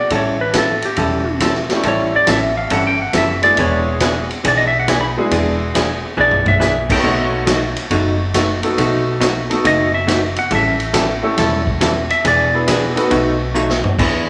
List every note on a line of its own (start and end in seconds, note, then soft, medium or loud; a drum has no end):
0.00 0.12 D5 medium
0.10 0.80 A1 medium
0.10 0.34 E3 medium
0.10 0.34 G3 medium
0.10 0.35 C#4 medium
0.10 0.35 E4 medium
0.10 0.35 A4 medium
0.10 kick soft
0.10 ride medium
0.15 0.41 C#5 medium
0.41 0.55 B4 loud
0.54 0.67 E3 medium
0.54 0.67 G3 medium
0.54 0.67 C#4 medium
0.54 0.67 E4 medium
0.54 0.67 A4 medium
0.54 kick soft
0.54 snare medium
0.54 hi-hat pedal soft
0.54 ride medium
0.58 0.85 A4 medium
0.82 1.38 G4 medium
0.82 ride soft
0.96 1.67 E1 medium
0.96 1.21 E3 medium
0.96 1.21 G3 medium
0.96 1.21 C#4 medium
0.96 1.21 E4 medium
0.96 1.21 A4 medium
0.96 kick soft
0.96 ride medium
1.40 1.53 E3 medium
1.40 1.54 G3 medium
1.40 1.54 C#4 medium
1.40 1.54 E4 medium
1.40 1.54 A4 medium
1.40 kick soft
1.40 snare medium
1.40 hi-hat pedal medium
1.40 ride medium
1.55 snare soft
1.69 2.25 G3 medium
1.69 2.25 A3 medium
1.69 2.26 C#4 medium
1.69 2.26 E4 medium
1.69 2.26 G4 medium
1.69 snare soft
1.69 ride soft
1.83 2.19 A1 medium
1.83 2.08 E3 medium
1.83 2.08 G3 medium
1.83 2.08 C#4 medium
1.83 2.08 E4 medium
1.83 2.08 A4 medium
1.83 kick soft
1.83 ride medium
1.88 2.15 C#5 medium
2.16 2.29 D5 loud
2.27 2.64 A1 medium
2.27 2.40 E3 medium
2.27 2.40 G3 medium
2.27 2.40 C#4 medium
2.27 2.40 E4 medium
2.27 2.40 A4 medium
2.27 kick soft
2.27 snare medium
2.27 hi-hat pedal medium
2.27 ride medium
2.32 2.57 E5 medium
2.57 2.71 F5 medium
2.70 3.08 G1 medium
2.70 2.94 E3 medium
2.70 2.94 G3 medium
2.70 2.94 C#4 medium
2.70 2.95 E4 medium
2.70 2.95 A4 medium
2.70 2.86 F#5 medium
2.70 kick soft
2.70 ride medium
2.87 3.00 G5 medium
3.02 3.15 F#5 medium
3.13 3.51 F#1 medium
3.13 3.26 E3 medium
3.13 3.27 G3 medium
3.13 3.27 C#4 medium
3.13 3.27 E4 medium
3.13 3.27 A4 medium
3.13 kick soft
3.13 snare medium
3.13 hi-hat pedal medium
3.13 ride medium
3.18 3.43 E5 medium
3.42 3.98 G#3 medium
3.42 3.98 B3 medium
3.42 3.98 D4 medium
3.42 3.98 E4 medium
3.42 3.99 G#4 medium
3.42 3.57 D5 medium
3.42 ride soft
3.57 4.27 E1 medium
3.57 3.81 E3 medium
3.57 3.81 B3 medium
3.57 3.81 D4 medium
3.57 3.82 G#4 medium
3.57 4.00 C#5 medium
3.57 kick soft
3.57 ride medium
4.00 4.13 E3 medium
4.00 4.14 B3 medium
4.00 4.14 D4 medium
4.00 4.14 G#4 medium
4.00 kick soft
4.00 snare medium
4.00 hi-hat pedal medium
4.00 ride medium
4.31 ride soft
4.44 5.14 B1 medium
4.44 4.67 E3 medium
4.44 4.68 B3 medium
4.44 4.68 D4 medium
4.44 4.68 G#4 medium
4.44 4.57 D5 medium
4.44 kick soft
4.44 ride medium
4.58 4.67 D#5 medium
4.67 4.77 E5 medium
4.80 4.87 F#5 medium
4.88 5.00 E3 medium
4.88 5.00 B3 medium
4.88 5.00 D4 medium
4.88 5.01 G#4 medium
4.88 5.00 G#5 medium
4.88 kick soft
4.88 snare medium
4.88 hi-hat pedal medium
4.88 ride medium
5.01 5.10 B5 medium
5.17 5.72 G#3 medium
5.17 5.72 B3 medium
5.17 5.72 D4 medium
5.17 5.72 E4 medium
5.17 5.73 G#4 medium
5.31 6.01 E1 medium
5.31 5.55 E3 medium
5.31 5.55 B3 medium
5.31 5.55 D4 medium
5.31 5.55 G#4 medium
5.31 kick soft
5.31 ride medium
5.74 5.87 E3 medium
5.74 5.87 B3 medium
5.74 5.87 D4 medium
5.74 5.88 G#4 medium
5.74 kick soft
5.74 snare medium
5.74 hi-hat pedal medium
5.74 ride medium
6.17 6.87 B1 medium
6.17 6.41 E3 medium
6.17 6.41 B3 medium
6.17 6.41 D4 medium
6.17 6.41 G#4 medium
6.17 6.48 D5 medium
6.31 floor tom medium
6.46 6.88 E5 medium
6.46 floor tom medium
6.60 6.73 E3 medium
6.60 6.73 B3 medium
6.60 6.73 D4 medium
6.60 6.73 G#4 medium
6.60 snare soft
6.60 hi-hat pedal medium
6.90 7.45 A3 medium
6.90 7.45 B3 medium
6.90 7.45 D#4 medium
6.90 7.46 F#4 medium
6.90 7.46 A4 medium
6.90 7.08 G5 loud
6.90 kick medium
6.90 crash medium
7.03 7.73 B1 medium
7.03 7.27 B2 medium
7.03 7.27 F#3 medium
7.03 7.28 A3 medium
7.03 7.28 D#4 medium
7.03 7.28 F#4 medium
7.03 kick soft
7.08 7.50 F#5 medium
7.46 7.59 B2 medium
7.46 7.60 F#3 medium
7.46 7.60 A3 medium
7.46 7.60 D#4 medium
7.46 7.60 F#4 medium
7.46 kick soft
7.46 snare medium
7.46 hi-hat pedal medium
7.46 ride medium
7.76 ride medium
7.90 8.60 F#1 medium
7.90 8.14 B2 medium
7.90 8.14 F#3 medium
7.90 8.15 A3 medium
7.90 8.15 D#4 medium
7.90 8.15 F#4 medium
7.90 kick soft
7.90 ride medium
8.34 8.47 B2 medium
8.34 8.47 F#3 medium
8.34 8.47 A3 medium
8.34 8.47 D#4 medium
8.34 8.47 F#4 medium
8.34 kick soft
8.34 snare medium
8.34 hi-hat pedal medium
8.34 ride medium
8.63 9.18 A3 medium
8.63 9.19 B3 medium
8.63 9.18 D#4 medium
8.63 9.19 F#4 medium
8.63 9.19 A4 medium
8.63 ride soft
8.78 9.47 B1 medium
8.78 9.01 B2 medium
8.78 9.01 F#3 medium
8.78 9.01 A3 medium
8.78 9.02 D#4 medium
8.78 9.02 F#4 medium
8.78 kick soft
8.78 ride medium
9.20 9.33 B2 medium
9.20 9.33 F#3 medium
9.20 9.34 A3 medium
9.20 9.34 D#4 medium
9.20 9.34 F#4 medium
9.20 kick soft
9.20 snare medium
9.20 hi-hat pedal medium
9.20 ride medium
9.49 9.63 A3 medium
9.49 9.63 B3 medium
9.49 9.63 D#4 medium
9.49 9.63 F#4 medium
9.49 9.64 A4 medium
9.49 ride soft
9.64 10.34 F#1 medium
9.64 9.88 B2 medium
9.64 9.88 F#3 medium
9.64 9.88 A3 medium
9.64 9.88 D#4 medium
9.64 9.88 F#4 medium
9.64 9.94 D#5 medium
9.64 kick soft
9.64 ride medium
9.94 10.35 E5 medium
10.07 10.20 B2 medium
10.07 10.20 F#3 medium
10.07 10.20 A3 medium
10.07 10.20 D#4 medium
10.07 10.20 F#4 medium
10.07 kick soft
10.07 snare medium
10.07 hi-hat pedal soft
10.07 ride medium
10.36 10.52 F#5 loud
10.36 ride soft
10.51 11.21 A1 medium
10.51 10.74 E3 medium
10.51 10.74 G3 medium
10.51 10.75 C#4 medium
10.51 10.75 E4 medium
10.51 10.75 A4 medium
10.51 kick soft
10.51 ride medium
10.55 10.96 E5 medium
10.80 ride soft
10.93 11.06 E3 medium
10.93 11.07 G3 medium
10.93 11.07 C#4 medium
10.93 11.07 E4 medium
10.93 11.07 A4 loud
10.93 kick soft
10.93 snare medium
10.93 hi-hat pedal medium
10.93 ride medium
11.23 11.36 A3 medium
11.23 11.36 C#4 medium
11.23 11.36 E4 medium
11.23 11.37 G4 medium
11.23 11.37 A4 medium
11.37 12.07 E1 medium
11.37 11.61 E3 medium
11.37 11.61 G3 medium
11.37 11.62 C#4 medium
11.37 11.61 E4 medium
11.37 11.62 A4 medium
11.37 kick soft
11.37 snare soft
11.37 ride medium
11.67 kick medium
11.81 11.93 E3 medium
11.81 11.94 G3 medium
11.81 11.94 C#4 medium
11.81 11.94 E4 medium
11.81 11.94 A4 medium
11.81 kick soft
11.81 snare medium
11.81 hi-hat pedal medium
11.81 ride medium
12.10 12.25 E5 medium
12.10 ride soft
12.25 12.94 E1 medium
12.25 12.48 E3 medium
12.25 12.48 B3 medium
12.25 12.48 D4 medium
12.25 12.48 G#4 medium
12.25 12.99 D5 medium
12.25 kick soft
12.25 ride medium
12.54 12.94 B3 medium
12.54 12.95 D4 medium
12.54 12.95 E4 medium
12.54 12.95 G#4 medium
12.54 12.95 B4 medium
12.68 12.80 E3 medium
12.68 12.81 B3 medium
12.68 12.81 D4 medium
12.68 12.81 G#4 medium
12.68 kick soft
12.68 snare medium
12.68 hi-hat pedal medium
12.68 ride medium
12.96 13.10 B3 medium
12.96 13.10 D#4 medium
12.96 13.10 F#4 medium
12.96 13.10 A4 medium
12.96 13.10 B4 loud
12.96 ride medium
13.10 13.81 B1 loud
13.10 13.34 B2 medium
13.10 13.34 F#3 medium
13.10 13.35 A3 medium
13.10 13.35 D#4 medium
13.10 13.35 F#4 medium
13.10 kick soft
13.10 ride medium
13.55 13.67 B2 medium
13.55 13.67 F#3 medium
13.55 13.68 A3 medium
13.55 13.68 D#4 medium
13.55 13.68 F#4 medium
13.55 hi-hat pedal medium
13.70 snare medium
13.84 floor tom medium
13.99 14.29 E2 medium
13.99 14.22 E3 medium
13.99 14.29 B3 medium
13.99 14.22 B3 medium
13.99 14.22 D4 medium
13.99 14.29 D4 medium
13.99 14.29 E4 medium
13.99 14.22 G#4 medium
13.99 14.29 G#4 medium
13.99 14.29 B4 medium
13.99 kick medium
13.99 crash medium